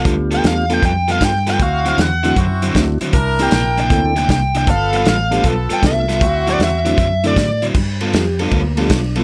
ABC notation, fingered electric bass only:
X:1
M:4/4
L:1/8
Q:"Swing" 1/4=156
K:Gmix
V:1 name="Fingered electric bass" clef=bass
D,,2 E,,2 F,,2 G,,2 | D,,2 E,,2 ^F,,2 D,, z | C,,2 _B,,,2 D,,2 C,,2 | G,,,2 A,,,2 B,,, z C,,2 |
D,,2 E,,2 ^F,,2 A,,2 | G,,2 F,,2 D,,2 B,,,2 |]